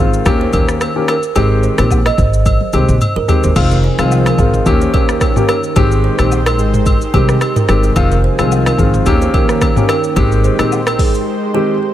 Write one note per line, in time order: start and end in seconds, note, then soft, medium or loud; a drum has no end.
0.00 0.17 G#1 medium
0.00 0.23 D#3 medium
0.00 0.24 G#3 medium
0.00 0.24 C4 medium
0.00 0.24 F4 medium
0.00 0.10 G#4 medium
0.14 shaker medium
0.25 0.45 D#2 loud
0.25 0.90 D#3 medium
0.25 0.90 A#3 medium
0.25 0.90 C#4 medium
0.25 0.90 G4 loud
0.25 kick loud
0.25 cross-stick loud
0.25 high agogo medium
0.25 shaker medium
0.41 0.51 C5 medium
0.53 0.84 D#2 medium
0.53 0.65 A#4 medium
0.53 kick medium
0.53 high agogo medium
0.53 shaker medium
0.68 cross-stick medium
0.68 shaker medium
0.81 cross-stick medium
0.81 high agogo medium
0.81 shaker medium
0.95 1.14 D#3 medium
0.95 1.14 A#3 medium
0.95 1.14 C#4 medium
0.95 1.14 G4 medium
1.08 1.20 A#4 medium
1.08 cross-stick loud
1.08 high agogo medium
1.08 shaker soft
1.23 shaker medium
1.35 1.66 G#1 loud
1.35 1.75 D#3 medium
1.35 1.75 G#3 medium
1.35 1.75 C4 medium
1.35 1.75 G4 loud
1.35 1.48 G#4 loud
1.35 high agogo medium
1.35 shaker medium
1.63 1.75 C5 medium
1.63 shaker soft
1.78 2.07 A#1 medium
1.78 1.96 D#3 medium
1.78 1.96 G#3 medium
1.78 1.96 C4 medium
1.78 1.96 G4 medium
1.78 cross-stick medium
1.78 high agogo medium
1.78 shaker medium
1.91 kick medium
1.91 low woodblock medium
1.91 shaker medium
2.06 2.16 D#5 medium
2.06 cross-stick medium
2.06 high agogo medium
2.18 2.57 G#1 medium
2.18 2.30 C5 medium
2.18 kick medium
2.18 shaker medium
2.33 shaker medium
2.46 kick loud
2.46 high tom medium
2.46 high agogo medium
2.46 shaker medium
2.61 high tom soft
2.73 2.84 C2 medium
2.73 2.93 D#3 medium
2.73 2.93 G#3 medium
2.73 2.93 C4 medium
2.73 2.93 G4 medium
2.73 2.85 C5 medium
2.73 high agogo medium
2.73 shaker medium
2.89 2.97 A#1 medium
2.89 mid tom medium
2.89 shaker medium
3.01 mid tom medium
3.01 high agogo medium
3.01 shaker medium
3.16 3.25 G#1 medium
3.16 3.26 A#4 medium
3.28 3.48 D#3 medium
3.28 3.48 G#3 medium
3.28 3.48 C4 medium
3.28 3.48 G4 medium
3.28 floor tom medium
3.28 high agogo medium
3.28 shaker soft
3.44 3.52 G1 medium
3.44 3.53 C5 medium
3.44 floor tom medium
3.44 shaker medium
3.55 3.86 F1 loud
3.55 3.76 D#3 medium
3.55 4.65 F3 medium
3.55 3.76 G#3 medium
3.55 4.65 C4 medium
3.55 3.76 C4 medium
3.55 4.65 D#4 medium
3.55 3.76 F4 loud
3.55 4.65 G#4 medium
3.55 kick loud
3.55 crash loud
3.55 high agogo medium
3.55 shaker medium
3.71 3.81 A#4 medium
3.71 shaker medium
3.84 3.96 C5 medium
3.98 4.27 C2 medium
3.98 4.35 D#3 medium
3.98 4.36 G#3 medium
3.98 4.36 C4 medium
3.98 4.36 F4 medium
3.98 cross-stick medium
3.98 high agogo medium
3.98 shaker soft
4.12 low woodblock medium
4.12 shaker medium
4.26 4.36 A#4 medium
4.26 cross-stick loud
4.26 high agogo medium
4.26 shaker medium
4.38 4.58 G#1 medium
4.38 4.64 D#3 medium
4.38 4.64 G#3 medium
4.38 4.64 C4 medium
4.38 4.64 F4 medium
4.38 4.50 G#4 medium
4.38 kick medium
4.38 shaker medium
4.54 mid tom medium
4.54 shaker medium
4.66 4.86 D#2 loud
4.66 5.30 D#3 medium
4.66 5.75 D#3 medium
4.66 5.30 A#3 medium
4.66 5.75 A#3 medium
4.66 5.75 C#4 medium
4.66 5.30 C#4 medium
4.66 5.75 G4 medium
4.66 5.30 G4 loud
4.66 kick loud
4.66 high agogo medium
4.66 shaker medium
4.81 4.94 C5 medium
4.81 shaker medium
4.94 5.24 D#2 medium
4.94 5.06 A#4 medium
4.94 kick medium
4.94 high agogo medium
5.09 cross-stick medium
5.09 shaker medium
5.21 kick medium
5.21 cross-stick medium
5.21 high agogo medium
5.21 shaker medium
5.36 5.54 D#3 medium
5.36 5.54 A#3 medium
5.36 5.54 C#4 medium
5.36 5.54 G4 medium
5.36 mid tom medium
5.36 shaker medium
5.49 5.61 A#4 medium
5.49 cross-stick medium
5.49 high agogo medium
5.49 shaker soft
5.63 shaker medium
5.76 6.06 G#1 loud
5.76 6.15 D#3 medium
5.76 7.94 G#3 medium
5.76 6.15 G#3 medium
5.76 6.15 C4 medium
5.76 9.03 D#4 medium
5.76 7.94 G4 medium
5.76 6.15 G4 loud
5.76 5.88 G#4 loud
5.76 7.94 C5 medium
5.76 kick loud
5.76 high agogo medium
5.76 shaker medium
5.92 shaker medium
6.04 6.16 C5 medium
6.19 6.59 A#1 medium
6.19 6.37 D#3 medium
6.19 6.37 G#3 medium
6.19 6.37 C4 medium
6.19 6.37 G4 medium
6.19 cross-stick medium
6.19 high agogo medium
6.19 shaker medium
6.32 low woodblock medium
6.32 shaker medium
6.46 6.56 A#4 medium
6.46 cross-stick loud
6.46 high agogo medium
6.46 shaker medium
6.59 6.98 G#1 medium
6.59 6.71 G#4 medium
6.59 shaker medium
6.74 mid tom medium
6.74 shaker medium
6.86 kick loud
6.86 high agogo medium
6.86 shaker medium
7.01 shaker medium
7.13 7.33 C2 medium
7.13 7.33 D#3 medium
7.13 7.33 G#3 medium
7.13 7.33 C4 medium
7.13 7.26 G4 medium
7.13 7.34 G4 medium
7.13 kick medium
7.13 high agogo medium
7.29 cross-stick medium
7.29 shaker medium
7.41 cross-stick medium
7.41 high agogo medium
7.41 shaker medium
7.56 7.66 A#4 medium
7.56 mid tom medium
7.56 shaker medium
7.68 7.88 G1 medium
7.68 7.88 D#3 medium
7.68 7.88 G#3 medium
7.68 7.88 C4 medium
7.68 7.88 G4 medium
7.68 cross-stick medium
7.68 high agogo medium
7.68 shaker soft
7.83 7.94 G#4 medium
7.83 shaker medium
7.96 8.26 F1 loud
7.96 8.16 D#3 medium
7.96 9.05 F3 medium
7.96 8.16 G#3 medium
7.96 9.05 C4 medium
7.96 8.16 C4 medium
7.96 8.16 F4 loud
7.96 9.05 G#4 medium
7.96 kick loud
7.96 high agogo medium
7.96 shaker medium
8.12 8.24 A#4 medium
8.12 shaker medium
8.24 8.36 C5 medium
8.38 8.67 C2 medium
8.38 8.76 D#3 medium
8.38 8.76 G#3 medium
8.38 8.76 C4 medium
8.38 8.76 F4 medium
8.38 cross-stick medium
8.38 high agogo medium
8.38 shaker medium
8.52 low woodblock medium
8.52 shaker medium
8.66 8.79 A#4 medium
8.66 cross-stick loud
8.66 high agogo medium
8.66 shaker medium
8.78 8.98 G#1 medium
8.78 9.04 D#3 medium
8.78 9.04 G#3 medium
8.78 9.04 C4 medium
8.78 9.04 F4 medium
8.78 8.91 G#4 medium
8.78 kick medium
8.78 shaker medium
8.94 mid tom loud
8.94 shaker medium
9.06 9.26 D#2 loud
9.06 9.70 D#3 medium
9.06 10.15 D#3 medium
9.06 9.70 A#3 medium
9.06 10.15 A#3 medium
9.06 9.70 C#4 medium
9.06 10.15 C#4 medium
9.06 9.70 G4 loud
9.06 11.94 G4 medium
9.06 kick loud
9.06 high agogo medium
9.06 shaker medium
9.22 9.31 C5 medium
9.22 shaker medium
9.34 9.64 D#2 medium
9.34 9.46 A#4 medium
9.34 kick medium
9.34 high agogo medium
9.49 cross-stick medium
9.49 shaker medium
9.61 kick medium
9.61 cross-stick medium
9.61 high agogo medium
9.61 shaker medium
9.76 9.94 D#3 medium
9.76 9.94 A#3 medium
9.76 9.94 C#4 medium
9.76 9.95 G4 medium
9.76 mid tom loud
9.76 shaker medium
9.89 10.01 A#4 medium
9.89 cross-stick loud
9.89 high agogo medium
9.89 shaker soft
10.04 shaker medium
10.16 10.47 G#1 loud
10.16 10.55 D#3 loud
10.16 10.55 G#3 medium
10.16 11.94 G#3 medium
10.16 10.55 C4 medium
10.16 11.94 D#4 medium
10.16 10.56 G4 loud
10.16 10.28 G#4 loud
10.16 11.94 C5 loud
10.16 kick loud
10.16 high agogo medium
10.16 shaker medium
10.32 shaker medium
10.44 10.56 C5 medium
10.44 shaker medium
10.59 10.99 A#1 medium
10.59 10.77 D#3 medium
10.59 10.77 G#3 medium
10.59 10.77 C4 medium
10.59 10.77 G4 medium
10.59 cross-stick medium
10.59 high agogo medium
10.59 shaker medium
10.72 low woodblock medium
10.72 shaker medium
10.87 10.96 A#4 medium
10.87 cross-stick loud
10.87 high agogo medium
10.87 shaker medium
10.99 11.18 G#1 medium
10.99 11.11 G#4 medium
10.99 kick medium
10.99 open hi-hat medium
10.99 shaker medium
11.14 shaker medium
11.54 11.74 D#3 medium
11.54 11.74 G#3 medium
11.54 11.74 C4 medium
11.54 11.74 G4 medium
11.54 11.66 G4 medium